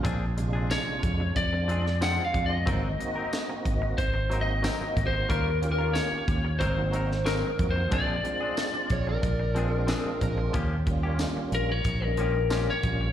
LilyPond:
<<
  \new Staff \with { instrumentName = "Lead electric guitar" } { \time 4/4 \key bes \dorian \tempo 4 = 91 r4 des''4 d''4 \tuplet 3/2 { ges''8 f''8 ees''8~ } | ees''2 \tuplet 3/2 { c''4 ees''8~ ees''4 c''8 } | \tuplet 3/2 { bes'4 bes'8 } des''4 c''4 \tuplet 3/2 { bes'4 c''8 } | d''2. r4 |
r4. bes'16 des''8 bes'4 des''8. | }
  \new Staff \with { instrumentName = "Electric slide guitar" } { \time 4/4 \key bes \dorian r1 | r1 | r1 | r4. des''16 bes'4.~ bes'16 bes'8 |
r1 | }
  \new Staff \with { instrumentName = "Clean electric guitar" } { \time 4/4 \key bes \dorian <f c' d' aes'>16 r8 <c' d' aes'>16 r4. <f c' d' aes'>16 r16 <f c' d' aes'>16 r8. | <ges c' ees' bes'>16 r8 <c' ees' bes'>16 r4. <ges c' ees' bes'>16 r16 <ges c' ees' bes'>16 r8. | <g des' f' bes'>16 r8 <des' f' bes'>16 r4 <ges c' ees' bes'>16 r16 <ges c' ees' bes'>16 r16 <ges c' ees' bes'>16 r8. | <f c' d' aes'>16 r8 <c' d' aes'>16 r4. <f c' d' aes'>16 r16 <f c' d' aes'>16 r8. |
<f bes des' g'>16 r8 <bes des' g'>16 r4. <f bes des' g'>16 r16 <f bes des' g'>16 r8. | }
  \new Staff \with { instrumentName = "Tonewheel organ" } { \time 4/4 \key bes \dorian r8 <c aes d' f'>4~ <c aes d' f'>16 r8 <aes c' d' f'>8 r16 <aes c' d' f'>16 r16 <aes c' d' f'>16 r16 | <bes c' ees' ges'>16 r16 <bes c' ees' ges'>4. r8 <bes c' ees' ges'>8 r16 <bes c' ees' ges'>8. | r8 <bes des' f' g'>4~ <bes des' f' g'>16 r8 <bes c' ees' ges'>8 r16 <bes c' ees' aes'>16 r16 <bes c' ees' ges'>16 r16 | <aes c' d' f'>16 r16 <aes c' d' f'>4. r8 <aes c' d' f'>8 r16 <aes c' d' f'>8. |
r8 <g bes des' f'>4~ <g bes des' f'>16 r8 <g bes des' ees'>8 r16 <g bes des' f'>16 r16 <g bes des' f'>16 r16 | }
  \new Staff \with { instrumentName = "Fingered electric bass" } { \clef bass \time 4/4 \key bes \dorian bes,,4~ bes,,16 r16 f,8 f,4. f,8 | aes,,8 r4 aes,,8 aes,,4~ aes,,16 r16 aes,,8 | ees,4~ ees,16 r16 ees,8 aes,,4. f,8 | bes,,8 r4 bes,,8 bes,,4~ bes,,16 r16 bes,,8 |
ees,4~ ees,16 r16 bes,,8 bes,,4. bes,,8 | }
  \new DrumStaff \with { instrumentName = "Drums" } \drummode { \time 4/4 <hh bd>8 hh8 <hh sn tamb>8 <hh bd>8 <hh bd>8 hh16 sn16 <hh sn tamb>8 <hh bd>8 | <hh bd>8 hh8 <hh sn tamb>8 <hh bd>8 <hh bd>8 hh8 <hh sn tamb>8 <hh bd>8 | <hh bd>8 hh8 <hh sn tamb>8 <hh bd>8 <hh bd>8 hh16 sn16 <hh sn tamb>8 <hh bd>8 | <hh bd>8 hh8 <hh sn tamb>8 <hh bd>8 <hh bd>8 hh8 <hh sn tamb>8 <hh bd>8 |
<hh bd>8 <hh bd>8 <hh sn tamb>8 hh8 <hh bd>8 hh8 <hh sn tamb>8 <hh bd>8 | }
>>